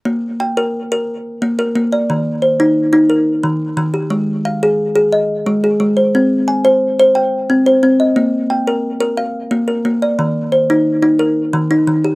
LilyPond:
<<
  \new Staff \with { instrumentName = "Kalimba" } { \time 12/8 \key ees \major \tempo 4. = 119 r4 g''4. r2 bes'4 d''8~ | d''8 r8 c''4. r8 bes'4. r4 g'8~ | g'8 r8 f''4. r8 ees''4. aes'4 c''8~ | c''8 r8 aes''4. r8 g''4. c''4 ees''8~ |
ees''8 r8 g''4. r8 f''4. bes'4 d''8~ | d''8 r8 c''4. r8 bes'4. ees'4 g'8 | }
  \new Staff \with { instrumentName = "Kalimba" } { \time 12/8 \key ees \major bes4 r8 bes'4 bes'4 r8 bes4 bes4 | ees4 r8 ees'4 ees'4 r8 ees4 ees4 | aes4 r8 aes'4 aes'4 r8 aes4 aes4 | c'4 r8 c''4 c''4 r8 c'4 c'4 |
bes4 r8 bes'4 bes'4 r8 bes4 bes4 | ees4 r8 ees'4 ees'4 r8 ees4 ees4 | }
>>